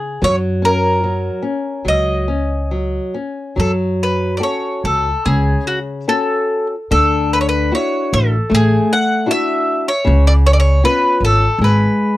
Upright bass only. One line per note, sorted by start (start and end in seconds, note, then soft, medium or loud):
0.22 1.28 F#2 medium
1.86 2.98 C#2 medium
3.57 4.40 F#2 medium
4.84 5.11 C#2 medium
5.26 5.53 C#2 medium
6.91 7.70 D2 medium
8.13 8.38 A1 medium
8.51 8.76 A1 loud
10.07 10.81 C#2 loud
11.20 11.46 G#1 medium
11.59 11.85 G#1 medium